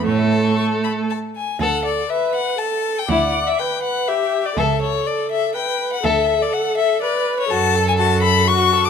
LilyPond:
<<
  \new Staff \with { instrumentName = "Violin" } { \time 3/4 \key a \major \tempo 4 = 122 cis''16 e''16 a''16 cis'''16 cis'''8 b''8 a''8 gis''8 | \key d \major fis''8 d''8 e''8 fis''8 a''8. g''16 | fis''8. e''16 g''8 fis''8 e''8. d''16 | e''8 cis''8 d''8 e''8 g''8. fis''16 |
e''8. d''16 fis''8 e''8 d''8. cis''16 | \key fis \minor a''8. gis''16 a''8 b''8 cis'''8. d'''16 | }
  \new Staff \with { instrumentName = "Viola" } { \time 3/4 \key a \major a2 r4 | \key d \major a'4 b'4 a'4 | d''4 b'4 g'4 | a'2 b'4 |
a'2 b'4 | \key fis \minor a'2 fis'4 | }
  \new Staff \with { instrumentName = "Violin" } { \time 3/4 \key a \major a'2 r4 | \key d \major a'8 r2 r8 | e'8 r2 r8 | a'8 r2 r8 |
a'8 r2 r8 | \key fis \minor fis'8 a'8 fis'8 a'8 fis'8 a'8 | }
  \new Staff \with { instrumentName = "Cello" } { \clef bass \time 3/4 \key a \major a,4 r2 | \key d \major d,4 r2 | d,4 r2 | cis,4 r2 |
d,4 r2 | \key fis \minor fis,2. | }
>>